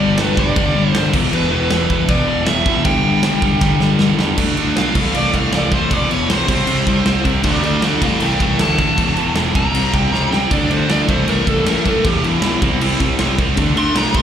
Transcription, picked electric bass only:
0.01 0.14 G1 medium
0.19 0.32 G1 loud
0.37 0.51 G1 medium
0.57 0.70 G1 loud
0.76 0.89 G1 medium
0.95 1.08 G1 loud
1.14 1.27 E1 loud
1.35 1.48 E1 loud
1.53 1.66 E1 loud
1.72 1.85 E1 medium
1.90 2.04 E1 medium
2.09 2.23 E1 medium
2.29 2.42 E1 medium
2.47 2.61 E1 loud
2.66 2.80 E1 loud
2.85 2.99 G1 loud
3.05 3.18 G1 medium
3.23 3.37 G1 medium
3.42 3.56 G1 medium
3.62 3.75 G1 medium
3.81 3.94 G1 medium
4.01 4.14 G1 loud
4.19 4.33 E2 loud
4.38 4.51 D2 medium
4.58 4.70 D2 medium
4.77 4.90 B1 medium
4.95 5.08 C2 medium
5.15 5.28 C2 medium
5.34 5.47 C2 medium
5.53 5.79 C2 medium
5.91 6.04 E1 loud
6.10 6.23 E1 medium
6.28 6.42 B1 medium
6.49 6.62 C2 medium
6.66 6.80 C2 medium
6.87 7.00 C2 medium
7.05 7.44 C2 medium
7.44 7.57 D2 loud
7.63 7.76 D2 medium
7.83 7.96 D2 medium
8.02 8.15 C2 medium
8.21 8.34 C2 medium
8.40 8.53 C2 medium
8.60 8.86 D2 medium
8.98 9.11 E1 loud
9.16 9.30 E1 medium
9.36 9.49 E1 medium
9.55 9.68 C2 medium
9.74 9.87 C2 medium
9.93 10.06 C2 medium
10.12 10.38 C#2 medium
10.51 10.64 D2 medium
10.70 10.83 D2 medium
10.89 11.02 D2 medium
11.09 11.22 C2 medium
11.28 11.41 C2 loud
11.47 11.60 C2 medium
11.65 11.91 F#2 loud
12.05 12.17 E1 loud
12.23 12.36 E1 medium
12.42 12.55 B1 medium
12.62 12.75 C2 medium
12.81 12.94 C2 medium
13.00 13.13 C2 medium
13.20 13.57 C2 medium
13.57 13.70 D2 loud
13.76 13.89 D2 loud
13.95 14.08 B1 medium
14.15 14.22 C2 medium

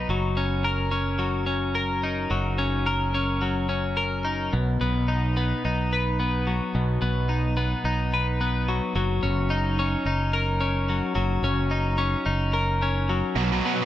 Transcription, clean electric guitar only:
0.00 0.40 D#4 soft
0.10 1.18 F#3 medium
0.37 0.90 C#4 medium
0.64 1.74 A#4 medium
0.91 1.45 C#4 medium
1.19 2.29 F#3 medium
1.46 2.57 C#4 soft
1.75 2.85 A#4 medium
2.03 3.42 D#4 medium
2.31 3.40 F#3 medium
2.58 3.13 C#4 medium
2.86 3.96 A#4 medium
3.14 3.68 C#4 medium
3.42 4.53 F#3 medium
3.69 4.53 C#4 medium
3.97 4.53 A#4 medium
4.25 4.53 D#4 medium
4.53 5.91 B2 medium
4.81 5.36 B3 medium
5.08 5.65 D#4 medium
5.37 6.18 B3 medium
5.65 7.29 D#4 medium
5.93 7.30 B4 medium
6.20 7.00 B3 medium
6.47 8.68 F#3 soft
6.75 8.13 B2 medium
7.02 7.56 B3 medium
7.29 7.85 D#4 medium
7.57 8.40 B3 medium
7.85 9.26 D#4 medium
8.14 8.96 B4 medium
8.41 8.96 B3 medium
8.69 8.95 F#3 medium
8.96 10.89 F#3 medium
9.23 9.78 C#4 medium
9.50 10.06 D#4 medium
9.79 10.59 C#4 medium
10.06 11.44 D#4 medium
10.33 11.71 A#4 medium
10.61 11.43 C#4 medium
10.89 11.14 F#3 medium
11.15 12.54 F#3 medium
11.44 11.97 C#4 medium
11.71 12.25 D#4 medium
11.98 12.81 C#4 medium
12.26 13.36 D#4 medium
12.53 13.37 A#4 medium
12.82 13.37 C#4 medium
13.09 13.37 F#3 medium
13.37 13.85 B2 medium
13.65 13.85 B3 medium

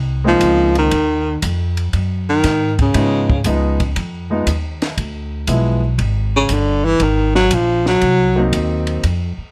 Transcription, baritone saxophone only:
0.28 0.74 F3 medium
0.79 1.40 D#3 medium
2.29 2.76 D#3 medium
2.82 3.43 C#3 medium
6.36 6.55 C#3 medium
6.54 6.86 D3 medium
6.85 7.05 E3 loud
7.03 7.35 D#3 medium
7.36 7.56 F#3 loud
7.54 7.87 F3 medium
7.88 8.50 F#3 medium

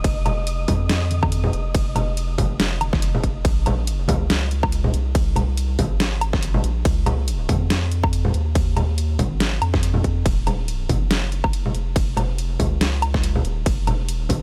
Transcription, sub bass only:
0.04 0.67 F1 loud
0.68 1.52 F2 loud
1.53 2.37 F1 loud
2.38 3.43 F1 loud
3.45 4.07 A#1 loud
4.09 4.92 C#2 loud
4.94 5.77 C2 loud
5.79 6.62 G#1 loud
6.64 6.84 A#1 loud
6.85 7.48 C#2 loud
7.49 8.33 F2 loud
8.34 9.18 D#2 loud
9.19 9.60 G#1 loud
9.62 10.24 F2 loud
10.26 10.88 D#1 loud
10.89 11.73 F#1 loud
11.75 12.58 F1 loud
12.60 13.43 C#2 loud
13.45 13.65 D#1 loud
13.66 14.10 F1 loud
14.10 14.28 E1 loud
14.30 14.42 G#1 loud

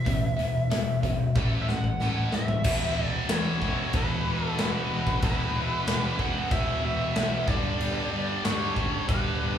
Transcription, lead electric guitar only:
0.00 1.61 E5 medium
1.62 1.68 E5 medium
1.69 2.34 F#5 medium
2.35 3.05 E5 loud
3.05 3.34 D5 loud
3.33 3.92 C#5 medium
3.96 4.46 B4 medium
4.46 4.60 A4 medium
4.61 5.20 B4 loud
5.24 6.23 B4 loud
6.21 6.51 F#5 loud
6.52 6.84 E5 loud
6.85 7.51 E5 medium
7.48 8.44 D5 loud
8.45 9.08 C#5 medium
9.08 9.58 B4 medium

